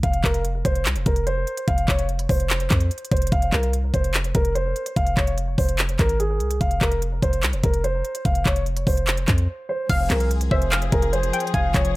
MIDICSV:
0, 0, Header, 1, 6, 480
1, 0, Start_track
1, 0, Key_signature, -4, "minor"
1, 0, Tempo, 410959
1, 39, Time_signature, 4, 2, 24, 8
1, 13974, End_track
2, 0, Start_track
2, 0, Title_t, "Synth pluck"
2, 0, Program_c, 0, 84
2, 11558, Note_on_c, 0, 77, 117
2, 12235, Note_off_c, 0, 77, 0
2, 12278, Note_on_c, 0, 76, 82
2, 12506, Note_off_c, 0, 76, 0
2, 12519, Note_on_c, 0, 77, 90
2, 13195, Note_off_c, 0, 77, 0
2, 13238, Note_on_c, 0, 79, 89
2, 13466, Note_off_c, 0, 79, 0
2, 13479, Note_on_c, 0, 80, 101
2, 13974, Note_off_c, 0, 80, 0
2, 13974, End_track
3, 0, Start_track
3, 0, Title_t, "Grand piano"
3, 0, Program_c, 1, 0
3, 38, Note_on_c, 1, 77, 90
3, 233, Note_off_c, 1, 77, 0
3, 278, Note_on_c, 1, 70, 84
3, 473, Note_off_c, 1, 70, 0
3, 757, Note_on_c, 1, 72, 91
3, 953, Note_off_c, 1, 72, 0
3, 1237, Note_on_c, 1, 70, 83
3, 1433, Note_off_c, 1, 70, 0
3, 1479, Note_on_c, 1, 72, 89
3, 1930, Note_off_c, 1, 72, 0
3, 1960, Note_on_c, 1, 77, 93
3, 2154, Note_off_c, 1, 77, 0
3, 2199, Note_on_c, 1, 73, 82
3, 2394, Note_off_c, 1, 73, 0
3, 2679, Note_on_c, 1, 72, 77
3, 3592, Note_off_c, 1, 72, 0
3, 3639, Note_on_c, 1, 72, 77
3, 3834, Note_off_c, 1, 72, 0
3, 3880, Note_on_c, 1, 77, 90
3, 4074, Note_off_c, 1, 77, 0
3, 4120, Note_on_c, 1, 70, 78
3, 4315, Note_off_c, 1, 70, 0
3, 4598, Note_on_c, 1, 72, 81
3, 4793, Note_off_c, 1, 72, 0
3, 5077, Note_on_c, 1, 70, 83
3, 5273, Note_off_c, 1, 70, 0
3, 5316, Note_on_c, 1, 72, 86
3, 5768, Note_off_c, 1, 72, 0
3, 5797, Note_on_c, 1, 77, 99
3, 5992, Note_off_c, 1, 77, 0
3, 6037, Note_on_c, 1, 73, 82
3, 6232, Note_off_c, 1, 73, 0
3, 6518, Note_on_c, 1, 72, 77
3, 6713, Note_off_c, 1, 72, 0
3, 6997, Note_on_c, 1, 70, 92
3, 7193, Note_off_c, 1, 70, 0
3, 7238, Note_on_c, 1, 68, 82
3, 7689, Note_off_c, 1, 68, 0
3, 7717, Note_on_c, 1, 77, 89
3, 7912, Note_off_c, 1, 77, 0
3, 7956, Note_on_c, 1, 70, 86
3, 8152, Note_off_c, 1, 70, 0
3, 8437, Note_on_c, 1, 72, 91
3, 8632, Note_off_c, 1, 72, 0
3, 8917, Note_on_c, 1, 70, 84
3, 9113, Note_off_c, 1, 70, 0
3, 9158, Note_on_c, 1, 72, 88
3, 9609, Note_off_c, 1, 72, 0
3, 9638, Note_on_c, 1, 77, 93
3, 9833, Note_off_c, 1, 77, 0
3, 9879, Note_on_c, 1, 73, 81
3, 10074, Note_off_c, 1, 73, 0
3, 10357, Note_on_c, 1, 72, 76
3, 11271, Note_off_c, 1, 72, 0
3, 11319, Note_on_c, 1, 72, 77
3, 11514, Note_off_c, 1, 72, 0
3, 11559, Note_on_c, 1, 77, 90
3, 11754, Note_off_c, 1, 77, 0
3, 11799, Note_on_c, 1, 70, 77
3, 11993, Note_off_c, 1, 70, 0
3, 12279, Note_on_c, 1, 72, 83
3, 12474, Note_off_c, 1, 72, 0
3, 12757, Note_on_c, 1, 70, 87
3, 12953, Note_off_c, 1, 70, 0
3, 12997, Note_on_c, 1, 72, 91
3, 13449, Note_off_c, 1, 72, 0
3, 13477, Note_on_c, 1, 77, 99
3, 13672, Note_off_c, 1, 77, 0
3, 13718, Note_on_c, 1, 73, 85
3, 13913, Note_off_c, 1, 73, 0
3, 13974, End_track
4, 0, Start_track
4, 0, Title_t, "String section"
4, 0, Program_c, 2, 48
4, 11557, Note_on_c, 2, 53, 85
4, 11557, Note_on_c, 2, 60, 79
4, 11557, Note_on_c, 2, 68, 93
4, 13974, Note_off_c, 2, 53, 0
4, 13974, Note_off_c, 2, 60, 0
4, 13974, Note_off_c, 2, 68, 0
4, 13974, End_track
5, 0, Start_track
5, 0, Title_t, "808-style bass"
5, 0, Program_c, 3, 38
5, 39, Note_on_c, 3, 29, 115
5, 269, Note_off_c, 3, 29, 0
5, 278, Note_on_c, 3, 29, 103
5, 739, Note_off_c, 3, 29, 0
5, 759, Note_on_c, 3, 29, 105
5, 998, Note_on_c, 3, 36, 98
5, 1016, Note_off_c, 3, 29, 0
5, 1118, Note_on_c, 3, 29, 100
5, 1136, Note_off_c, 3, 36, 0
5, 1232, Note_off_c, 3, 29, 0
5, 1239, Note_on_c, 3, 29, 105
5, 1700, Note_off_c, 3, 29, 0
5, 1959, Note_on_c, 3, 29, 111
5, 2189, Note_off_c, 3, 29, 0
5, 2197, Note_on_c, 3, 29, 99
5, 2659, Note_off_c, 3, 29, 0
5, 2679, Note_on_c, 3, 29, 107
5, 3139, Note_off_c, 3, 29, 0
5, 3159, Note_on_c, 3, 41, 105
5, 3389, Note_off_c, 3, 41, 0
5, 3638, Note_on_c, 3, 29, 100
5, 3869, Note_off_c, 3, 29, 0
5, 3878, Note_on_c, 3, 29, 111
5, 4109, Note_off_c, 3, 29, 0
5, 4117, Note_on_c, 3, 36, 99
5, 4579, Note_off_c, 3, 36, 0
5, 4599, Note_on_c, 3, 29, 105
5, 5059, Note_off_c, 3, 29, 0
5, 5079, Note_on_c, 3, 29, 104
5, 5539, Note_off_c, 3, 29, 0
5, 5798, Note_on_c, 3, 29, 115
5, 6029, Note_off_c, 3, 29, 0
5, 6037, Note_on_c, 3, 29, 103
5, 6498, Note_off_c, 3, 29, 0
5, 6518, Note_on_c, 3, 29, 107
5, 6979, Note_off_c, 3, 29, 0
5, 6999, Note_on_c, 3, 32, 108
5, 7478, Note_on_c, 3, 36, 94
5, 7496, Note_off_c, 3, 32, 0
5, 7706, Note_off_c, 3, 36, 0
5, 7718, Note_on_c, 3, 29, 113
5, 7948, Note_off_c, 3, 29, 0
5, 7957, Note_on_c, 3, 29, 101
5, 8418, Note_off_c, 3, 29, 0
5, 8438, Note_on_c, 3, 29, 108
5, 8678, Note_on_c, 3, 36, 100
5, 8695, Note_off_c, 3, 29, 0
5, 8798, Note_on_c, 3, 29, 98
5, 8816, Note_off_c, 3, 36, 0
5, 8912, Note_off_c, 3, 29, 0
5, 8918, Note_on_c, 3, 29, 104
5, 9379, Note_off_c, 3, 29, 0
5, 9637, Note_on_c, 3, 29, 112
5, 9868, Note_off_c, 3, 29, 0
5, 9877, Note_on_c, 3, 29, 104
5, 10338, Note_off_c, 3, 29, 0
5, 10358, Note_on_c, 3, 29, 102
5, 10819, Note_off_c, 3, 29, 0
5, 10838, Note_on_c, 3, 41, 107
5, 11068, Note_off_c, 3, 41, 0
5, 11558, Note_on_c, 3, 29, 115
5, 11788, Note_off_c, 3, 29, 0
5, 11796, Note_on_c, 3, 36, 101
5, 12258, Note_off_c, 3, 36, 0
5, 12278, Note_on_c, 3, 29, 105
5, 12739, Note_off_c, 3, 29, 0
5, 12759, Note_on_c, 3, 29, 107
5, 13219, Note_off_c, 3, 29, 0
5, 13478, Note_on_c, 3, 29, 112
5, 13709, Note_off_c, 3, 29, 0
5, 13717, Note_on_c, 3, 29, 104
5, 13974, Note_off_c, 3, 29, 0
5, 13974, End_track
6, 0, Start_track
6, 0, Title_t, "Drums"
6, 39, Note_on_c, 9, 36, 105
6, 40, Note_on_c, 9, 42, 77
6, 156, Note_off_c, 9, 36, 0
6, 157, Note_off_c, 9, 42, 0
6, 157, Note_on_c, 9, 42, 59
6, 274, Note_off_c, 9, 42, 0
6, 278, Note_on_c, 9, 36, 99
6, 280, Note_on_c, 9, 39, 89
6, 395, Note_off_c, 9, 36, 0
6, 397, Note_off_c, 9, 39, 0
6, 399, Note_on_c, 9, 42, 60
6, 516, Note_off_c, 9, 42, 0
6, 522, Note_on_c, 9, 42, 78
6, 638, Note_off_c, 9, 42, 0
6, 759, Note_on_c, 9, 36, 87
6, 763, Note_on_c, 9, 42, 81
6, 876, Note_off_c, 9, 36, 0
6, 880, Note_off_c, 9, 42, 0
6, 882, Note_on_c, 9, 42, 60
6, 998, Note_on_c, 9, 39, 125
6, 999, Note_off_c, 9, 42, 0
6, 999, Note_on_c, 9, 42, 88
6, 1115, Note_off_c, 9, 39, 0
6, 1116, Note_off_c, 9, 42, 0
6, 1117, Note_on_c, 9, 42, 60
6, 1234, Note_off_c, 9, 42, 0
6, 1238, Note_on_c, 9, 42, 86
6, 1239, Note_on_c, 9, 36, 104
6, 1355, Note_off_c, 9, 42, 0
6, 1356, Note_off_c, 9, 36, 0
6, 1356, Note_on_c, 9, 42, 55
6, 1473, Note_off_c, 9, 42, 0
6, 1481, Note_on_c, 9, 42, 62
6, 1598, Note_off_c, 9, 42, 0
6, 1719, Note_on_c, 9, 42, 48
6, 1836, Note_off_c, 9, 42, 0
6, 1839, Note_on_c, 9, 42, 79
6, 1956, Note_off_c, 9, 42, 0
6, 1959, Note_on_c, 9, 36, 108
6, 1960, Note_on_c, 9, 42, 72
6, 2075, Note_off_c, 9, 36, 0
6, 2077, Note_off_c, 9, 42, 0
6, 2077, Note_on_c, 9, 42, 59
6, 2194, Note_off_c, 9, 42, 0
6, 2198, Note_on_c, 9, 36, 99
6, 2200, Note_on_c, 9, 39, 93
6, 2314, Note_off_c, 9, 36, 0
6, 2317, Note_off_c, 9, 39, 0
6, 2320, Note_on_c, 9, 42, 59
6, 2437, Note_off_c, 9, 42, 0
6, 2439, Note_on_c, 9, 42, 46
6, 2556, Note_off_c, 9, 42, 0
6, 2559, Note_on_c, 9, 42, 76
6, 2676, Note_off_c, 9, 42, 0
6, 2679, Note_on_c, 9, 36, 87
6, 2683, Note_on_c, 9, 46, 83
6, 2796, Note_off_c, 9, 36, 0
6, 2800, Note_off_c, 9, 46, 0
6, 2802, Note_on_c, 9, 42, 58
6, 2918, Note_on_c, 9, 39, 120
6, 2919, Note_off_c, 9, 42, 0
6, 2920, Note_on_c, 9, 42, 86
6, 3035, Note_off_c, 9, 39, 0
6, 3036, Note_off_c, 9, 42, 0
6, 3038, Note_on_c, 9, 42, 59
6, 3154, Note_off_c, 9, 42, 0
6, 3158, Note_on_c, 9, 39, 92
6, 3158, Note_on_c, 9, 42, 86
6, 3159, Note_on_c, 9, 36, 103
6, 3275, Note_off_c, 9, 39, 0
6, 3275, Note_off_c, 9, 42, 0
6, 3276, Note_off_c, 9, 36, 0
6, 3276, Note_on_c, 9, 42, 55
6, 3393, Note_off_c, 9, 42, 0
6, 3399, Note_on_c, 9, 42, 53
6, 3479, Note_off_c, 9, 42, 0
6, 3479, Note_on_c, 9, 42, 54
6, 3558, Note_off_c, 9, 42, 0
6, 3558, Note_on_c, 9, 42, 54
6, 3638, Note_off_c, 9, 42, 0
6, 3638, Note_on_c, 9, 42, 48
6, 3639, Note_on_c, 9, 36, 98
6, 3698, Note_off_c, 9, 42, 0
6, 3698, Note_on_c, 9, 42, 59
6, 3755, Note_off_c, 9, 36, 0
6, 3759, Note_off_c, 9, 42, 0
6, 3759, Note_on_c, 9, 42, 68
6, 3819, Note_off_c, 9, 42, 0
6, 3819, Note_on_c, 9, 42, 82
6, 3878, Note_on_c, 9, 36, 108
6, 3879, Note_off_c, 9, 42, 0
6, 3879, Note_on_c, 9, 42, 74
6, 3995, Note_off_c, 9, 36, 0
6, 3996, Note_off_c, 9, 42, 0
6, 3997, Note_on_c, 9, 42, 60
6, 4114, Note_off_c, 9, 42, 0
6, 4117, Note_on_c, 9, 36, 103
6, 4120, Note_on_c, 9, 39, 92
6, 4234, Note_off_c, 9, 36, 0
6, 4237, Note_off_c, 9, 39, 0
6, 4240, Note_on_c, 9, 42, 58
6, 4356, Note_off_c, 9, 42, 0
6, 4361, Note_on_c, 9, 42, 78
6, 4478, Note_off_c, 9, 42, 0
6, 4599, Note_on_c, 9, 36, 84
6, 4603, Note_on_c, 9, 42, 82
6, 4715, Note_off_c, 9, 36, 0
6, 4720, Note_off_c, 9, 42, 0
6, 4722, Note_on_c, 9, 42, 59
6, 4837, Note_on_c, 9, 39, 127
6, 4839, Note_off_c, 9, 42, 0
6, 4839, Note_on_c, 9, 42, 86
6, 4954, Note_off_c, 9, 39, 0
6, 4955, Note_off_c, 9, 42, 0
6, 4957, Note_on_c, 9, 42, 59
6, 5073, Note_off_c, 9, 42, 0
6, 5077, Note_on_c, 9, 42, 85
6, 5079, Note_on_c, 9, 36, 105
6, 5194, Note_off_c, 9, 42, 0
6, 5195, Note_on_c, 9, 42, 57
6, 5196, Note_off_c, 9, 36, 0
6, 5312, Note_off_c, 9, 42, 0
6, 5320, Note_on_c, 9, 42, 62
6, 5437, Note_off_c, 9, 42, 0
6, 5559, Note_on_c, 9, 42, 50
6, 5675, Note_off_c, 9, 42, 0
6, 5679, Note_on_c, 9, 42, 82
6, 5795, Note_off_c, 9, 42, 0
6, 5798, Note_on_c, 9, 36, 108
6, 5799, Note_on_c, 9, 42, 76
6, 5915, Note_off_c, 9, 36, 0
6, 5916, Note_off_c, 9, 42, 0
6, 5917, Note_on_c, 9, 42, 59
6, 6033, Note_off_c, 9, 42, 0
6, 6037, Note_on_c, 9, 36, 98
6, 6040, Note_on_c, 9, 39, 93
6, 6154, Note_off_c, 9, 36, 0
6, 6157, Note_off_c, 9, 39, 0
6, 6159, Note_on_c, 9, 42, 62
6, 6276, Note_off_c, 9, 42, 0
6, 6280, Note_on_c, 9, 42, 76
6, 6397, Note_off_c, 9, 42, 0
6, 6518, Note_on_c, 9, 36, 88
6, 6522, Note_on_c, 9, 46, 80
6, 6635, Note_off_c, 9, 36, 0
6, 6639, Note_off_c, 9, 46, 0
6, 6642, Note_on_c, 9, 42, 59
6, 6758, Note_on_c, 9, 39, 127
6, 6759, Note_off_c, 9, 42, 0
6, 6759, Note_on_c, 9, 42, 85
6, 6875, Note_off_c, 9, 39, 0
6, 6876, Note_off_c, 9, 42, 0
6, 6878, Note_on_c, 9, 42, 58
6, 6994, Note_off_c, 9, 42, 0
6, 6998, Note_on_c, 9, 39, 89
6, 6998, Note_on_c, 9, 42, 83
6, 6999, Note_on_c, 9, 36, 102
6, 7115, Note_off_c, 9, 39, 0
6, 7115, Note_off_c, 9, 42, 0
6, 7116, Note_off_c, 9, 36, 0
6, 7116, Note_on_c, 9, 42, 56
6, 7233, Note_off_c, 9, 42, 0
6, 7240, Note_on_c, 9, 42, 62
6, 7357, Note_off_c, 9, 42, 0
6, 7478, Note_on_c, 9, 42, 48
6, 7595, Note_off_c, 9, 42, 0
6, 7599, Note_on_c, 9, 42, 81
6, 7715, Note_off_c, 9, 42, 0
6, 7718, Note_on_c, 9, 36, 105
6, 7719, Note_on_c, 9, 42, 76
6, 7835, Note_off_c, 9, 36, 0
6, 7836, Note_off_c, 9, 42, 0
6, 7836, Note_on_c, 9, 42, 59
6, 7953, Note_off_c, 9, 42, 0
6, 7957, Note_on_c, 9, 36, 101
6, 7959, Note_on_c, 9, 39, 94
6, 8074, Note_off_c, 9, 36, 0
6, 8075, Note_off_c, 9, 39, 0
6, 8078, Note_on_c, 9, 42, 60
6, 8195, Note_off_c, 9, 42, 0
6, 8200, Note_on_c, 9, 42, 77
6, 8317, Note_off_c, 9, 42, 0
6, 8438, Note_on_c, 9, 36, 88
6, 8443, Note_on_c, 9, 42, 82
6, 8555, Note_off_c, 9, 36, 0
6, 8560, Note_off_c, 9, 42, 0
6, 8562, Note_on_c, 9, 42, 59
6, 8677, Note_on_c, 9, 39, 123
6, 8678, Note_off_c, 9, 42, 0
6, 8678, Note_on_c, 9, 42, 86
6, 8794, Note_off_c, 9, 39, 0
6, 8795, Note_off_c, 9, 42, 0
6, 8796, Note_on_c, 9, 42, 60
6, 8913, Note_off_c, 9, 42, 0
6, 8918, Note_on_c, 9, 42, 84
6, 8919, Note_on_c, 9, 36, 100
6, 9034, Note_off_c, 9, 42, 0
6, 9036, Note_off_c, 9, 36, 0
6, 9036, Note_on_c, 9, 42, 57
6, 9152, Note_off_c, 9, 42, 0
6, 9160, Note_on_c, 9, 42, 61
6, 9277, Note_off_c, 9, 42, 0
6, 9398, Note_on_c, 9, 42, 49
6, 9515, Note_off_c, 9, 42, 0
6, 9517, Note_on_c, 9, 42, 77
6, 9634, Note_off_c, 9, 42, 0
6, 9637, Note_on_c, 9, 36, 110
6, 9638, Note_on_c, 9, 42, 77
6, 9754, Note_off_c, 9, 36, 0
6, 9754, Note_off_c, 9, 42, 0
6, 9754, Note_on_c, 9, 42, 60
6, 9871, Note_off_c, 9, 42, 0
6, 9876, Note_on_c, 9, 36, 99
6, 9878, Note_on_c, 9, 39, 94
6, 9993, Note_off_c, 9, 36, 0
6, 9995, Note_off_c, 9, 39, 0
6, 9998, Note_on_c, 9, 42, 61
6, 10115, Note_off_c, 9, 42, 0
6, 10118, Note_on_c, 9, 42, 46
6, 10235, Note_off_c, 9, 42, 0
6, 10238, Note_on_c, 9, 42, 78
6, 10355, Note_off_c, 9, 42, 0
6, 10358, Note_on_c, 9, 36, 90
6, 10362, Note_on_c, 9, 46, 80
6, 10475, Note_off_c, 9, 36, 0
6, 10479, Note_off_c, 9, 46, 0
6, 10482, Note_on_c, 9, 42, 58
6, 10597, Note_on_c, 9, 39, 124
6, 10598, Note_off_c, 9, 42, 0
6, 10599, Note_on_c, 9, 42, 85
6, 10714, Note_off_c, 9, 39, 0
6, 10715, Note_off_c, 9, 42, 0
6, 10716, Note_on_c, 9, 42, 58
6, 10833, Note_off_c, 9, 42, 0
6, 10836, Note_on_c, 9, 39, 95
6, 10837, Note_on_c, 9, 42, 88
6, 10838, Note_on_c, 9, 36, 100
6, 10953, Note_off_c, 9, 39, 0
6, 10953, Note_off_c, 9, 42, 0
6, 10955, Note_off_c, 9, 36, 0
6, 10955, Note_on_c, 9, 42, 54
6, 11072, Note_off_c, 9, 42, 0
6, 11557, Note_on_c, 9, 36, 107
6, 11557, Note_on_c, 9, 49, 99
6, 11558, Note_on_c, 9, 42, 79
6, 11674, Note_off_c, 9, 36, 0
6, 11674, Note_off_c, 9, 49, 0
6, 11675, Note_off_c, 9, 42, 0
6, 11796, Note_on_c, 9, 36, 100
6, 11798, Note_on_c, 9, 39, 93
6, 11800, Note_on_c, 9, 42, 91
6, 11913, Note_off_c, 9, 36, 0
6, 11915, Note_off_c, 9, 39, 0
6, 11916, Note_off_c, 9, 42, 0
6, 11918, Note_on_c, 9, 42, 60
6, 12034, Note_off_c, 9, 42, 0
6, 12040, Note_on_c, 9, 42, 77
6, 12157, Note_off_c, 9, 42, 0
6, 12158, Note_on_c, 9, 42, 77
6, 12275, Note_off_c, 9, 42, 0
6, 12278, Note_on_c, 9, 36, 89
6, 12395, Note_off_c, 9, 36, 0
6, 12401, Note_on_c, 9, 42, 60
6, 12517, Note_on_c, 9, 39, 125
6, 12518, Note_off_c, 9, 42, 0
6, 12519, Note_on_c, 9, 42, 91
6, 12634, Note_off_c, 9, 39, 0
6, 12635, Note_off_c, 9, 42, 0
6, 12636, Note_on_c, 9, 42, 60
6, 12753, Note_off_c, 9, 42, 0
6, 12757, Note_on_c, 9, 42, 89
6, 12759, Note_on_c, 9, 36, 102
6, 12874, Note_off_c, 9, 42, 0
6, 12876, Note_off_c, 9, 36, 0
6, 12876, Note_on_c, 9, 42, 59
6, 12993, Note_off_c, 9, 42, 0
6, 13001, Note_on_c, 9, 42, 64
6, 13118, Note_off_c, 9, 42, 0
6, 13120, Note_on_c, 9, 42, 57
6, 13237, Note_off_c, 9, 42, 0
6, 13239, Note_on_c, 9, 42, 83
6, 13319, Note_off_c, 9, 42, 0
6, 13319, Note_on_c, 9, 42, 64
6, 13398, Note_off_c, 9, 42, 0
6, 13398, Note_on_c, 9, 42, 48
6, 13478, Note_on_c, 9, 36, 106
6, 13479, Note_off_c, 9, 42, 0
6, 13479, Note_on_c, 9, 42, 75
6, 13595, Note_off_c, 9, 36, 0
6, 13596, Note_off_c, 9, 42, 0
6, 13717, Note_on_c, 9, 36, 101
6, 13719, Note_on_c, 9, 39, 94
6, 13721, Note_on_c, 9, 42, 91
6, 13834, Note_off_c, 9, 36, 0
6, 13836, Note_off_c, 9, 39, 0
6, 13838, Note_off_c, 9, 42, 0
6, 13838, Note_on_c, 9, 42, 59
6, 13955, Note_off_c, 9, 42, 0
6, 13974, End_track
0, 0, End_of_file